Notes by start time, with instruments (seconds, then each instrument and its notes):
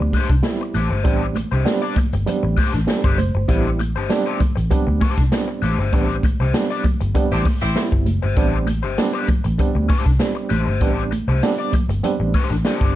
Already playing: reed electric piano G3 B3 C4 D4
0.00 fingered electric bass D2, muted overdriven electric guitar stroke
0.13 overdriven electric guitar D4 G4 C5, kick, snare, open hi-hat, muted conga, high conga
0.29 fingered electric bass C2, muted overdriven electric guitar stroke, kick, closed hi-hat
0.43 reed electric piano G3 B3 C4 E4, muted overdriven electric guitar stroke, snare, closed hi-hat, muted conga
0.61 muted overdriven electric guitar stroke
0.74 fingered electric bass A1, overdriven electric guitar D4 G4 C5, closed hi-hat, high conga
0.90 fingered electric bass G1, overdriven electric guitar D4 G4 C5
1.04 fingered electric bass A1, reed electric piano G3 B3 C4 D4, overdriven electric guitar D4 G4 C5, kick, closed hi-hat, muted conga
1.35 muted overdriven electric guitar stroke, closed hi-hat, muted conga, high conga
1.52 fingered electric bass C2, overdriven electric guitar D4 G4 C5
1.65 reed electric piano G3 B3 C4 D4, muted overdriven electric guitar stroke, snare, closed hi-hat, muted conga
1.82 overdriven electric guitar D4 G4 D5
1.96 muted fingered electric bass stroke, muted overdriven electric guitar stroke, kick, closed hi-hat, muted conga, high conga, low conga
2.13 fingered electric bass G1, muted overdriven electric guitar stroke, closed hi-hat
2.26 reed electric piano G3 B3 C4 D4, muted fingered electric bass stroke, muted overdriven electric guitar stroke, closed hi-hat, muted conga, low conga
2.43 fingered electric bass A1, muted overdriven electric guitar stroke
2.57 overdriven electric guitar D4 G4 C5, kick, snare, open hi-hat, muted conga, high conga
2.74 fingered electric bass A1, muted overdriven electric guitar stroke, snare, closed hi-hat
2.87 reed electric piano G3 B3 C4 D4 A4, muted overdriven electric guitar stroke, snare, closed hi-hat, muted conga
3.04 fingered electric bass G1, overdriven electric guitar D4 G4 C5, kick
3.18 fingered electric bass F#1, reed electric piano C5, muted overdriven electric guitar stroke, closed hi-hat, muted conga, high conga
3.35 fingered electric bass G1, muted overdriven electric guitar stroke
3.48 fingered electric bass A1, reed electric piano G3 B3 C4 E4, overdriven electric guitar D4 G4 C5, kick, closed hi-hat, muted conga
3.79 muted overdriven electric guitar stroke, closed hi-hat, muted conga, high conga
3.96 fingered electric bass G1, overdriven electric guitar D4 G4 C5
4.09 reed electric piano G3 B3 C4 D4, muted overdriven electric guitar stroke, snare, closed hi-hat, muted conga
4.26 overdriven electric guitar D4 G4 C5
4.40 muted overdriven electric guitar stroke, muted fingered electric bass stroke, kick, closed hi-hat, muted conga, high conga, low conga
4.56 fingered electric bass A1, muted overdriven electric guitar stroke, closed hi-hat
4.70 reed electric piano G3 B3 C4 D4, muted overdriven electric guitar stroke, kick, closed hi-hat, low conga
4.87 fingered electric bass D2, muted overdriven electric guitar stroke
5.01 overdriven electric guitar D4 G4 C5, kick, snare, open hi-hat, muted conga, high conga
5.17 fingered electric bass C2, muted overdriven electric guitar stroke, kick, snare, closed hi-hat
5.31 reed electric piano G3 B3 C4 D4, muted overdriven electric guitar stroke, snare, closed hi-hat, muted conga
5.48 muted overdriven electric guitar stroke
5.62 fingered electric bass A1, overdriven electric guitar D4 G4 C5, closed hi-hat, muted conga, high conga
5.78 fingered electric bass G1, overdriven electric guitar D4 G4 C5
5.93 fingered electric bass A1, reed electric piano G3 B3 C4 D4, overdriven electric guitar D4 G4 C5, kick, closed hi-hat, muted conga
6.23 muted overdriven electric guitar stroke, kick, closed hi-hat, high conga
6.40 fingered electric bass C2, overdriven electric guitar D4 G4 C5
6.54 reed electric piano G3 B3 C4 D4, muted overdriven electric guitar stroke, snare, closed hi-hat
6.70 overdriven electric guitar D4 G4 D5
6.84 muted overdriven electric guitar stroke, muted fingered electric bass stroke, kick, closed hi-hat, high conga, low conga
7.00 fingered electric bass G1, muted overdriven electric guitar stroke, closed hi-hat
7.15 reed electric piano G3 B3 C4 D4, muted overdriven electric guitar stroke, muted fingered electric bass stroke, kick, closed hi-hat, muted conga, low conga
7.32 fingered electric bass A1, horn section C4 E4 G4 C5, overdriven electric guitar D4 G4 C5
7.45 muted overdriven electric guitar stroke, kick, snare, open hi-hat, high conga
7.61 fingered electric bass A1, horn section C4 E4 G4 C5, muted overdriven electric guitar stroke, snare, closed hi-hat
7.76 reed electric piano G3 B3 C4 E4, muted overdriven electric guitar stroke, snare, closed hi-hat
7.92 fingered electric bass G1, muted overdriven electric guitar stroke, kick
8.06 fingered electric bass F#1, closed hi-hat, muted conga, high conga
8.22 fingered electric bass G1, overdriven electric guitar D4 G4 C5
8.36 fingered electric bass A1, reed electric piano G3 B3 C4 D4, overdriven electric guitar D4 G4 C5, kick, closed hi-hat, muted conga
8.67 muted overdriven electric guitar stroke, closed hi-hat, muted conga, high conga
8.83 fingered electric bass G1, overdriven electric guitar D4 G4 C5
8.98 reed electric piano G3 B3 C4 D4, muted overdriven electric guitar stroke, snare, closed hi-hat, muted conga
9.13 overdriven electric guitar D4 G4 C5
9.28 muted overdriven electric guitar stroke, muted fingered electric bass stroke, kick, closed hi-hat, high conga, low conga
9.44 fingered electric bass A1, muted overdriven electric guitar stroke, closed hi-hat
9.58 reed electric piano G3 B3 C4 D4, muted overdriven electric guitar stroke, kick, closed hi-hat, low conga
9.75 fingered electric bass D2, muted overdriven electric guitar stroke
9.89 overdriven electric guitar D4 G4 C5, kick, snare, open hi-hat, muted conga, high conga
10.05 fingered electric bass C2, muted overdriven electric guitar stroke, kick, snare, closed hi-hat
10.19 reed electric piano G3 B3 C4 D4, muted overdriven electric guitar stroke, snare, closed hi-hat
10.35 muted overdriven electric guitar stroke
10.49 fingered electric bass A1, overdriven electric guitar D4 G4 C5, closed hi-hat, muted conga, high conga
10.66 fingered electric bass G1, overdriven electric guitar D4 G4 C5
10.80 fingered electric bass A1, reed electric piano G3 B3 C4 D4, overdriven electric guitar D4 G4 C5, kick, closed hi-hat
11.11 muted overdriven electric guitar stroke, closed hi-hat, muted conga, high conga
11.28 fingered electric bass C2, overdriven electric guitar D4 G4 C5
11.42 reed electric piano G3 B3 C4 D4, muted overdriven electric guitar stroke, snare, closed hi-hat, muted conga
11.59 overdriven electric guitar D4 G4 D5
11.72 muted fingered electric bass stroke, muted overdriven electric guitar stroke, kick, closed hi-hat, muted conga, high conga, low conga
11.89 fingered electric bass G1, muted overdriven electric guitar stroke, closed hi-hat
12.03 reed electric piano G3 B3 C4 D4, muted overdriven electric guitar stroke, closed hi-hat, muted conga, low conga
12.20 fingered electric bass A1, muted overdriven electric guitar stroke
12.34 overdriven electric guitar D4 G4 C5, kick, snare, open hi-hat, muted conga, high conga
12.50 fingered electric bass A1, muted overdriven electric guitar stroke, snare, closed hi-hat
12.65 reed electric piano G3 B3 C4 D4, overdriven electric guitar D4 G4 C5, snare, closed hi-hat
12.81 fingered electric bass G1, kick